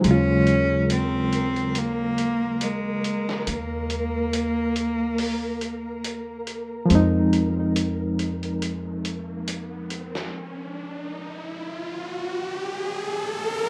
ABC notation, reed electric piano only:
X:1
M:4/4
L:1/8
Q:"Swing 16ths" 1/4=70
K:Ebdor
V:1 name="Reed electric piano" clef=bass
[D,G,A,F]8- | [D,G,A,F]8 | [F,A,CE]8- | [F,A,CE]8 |]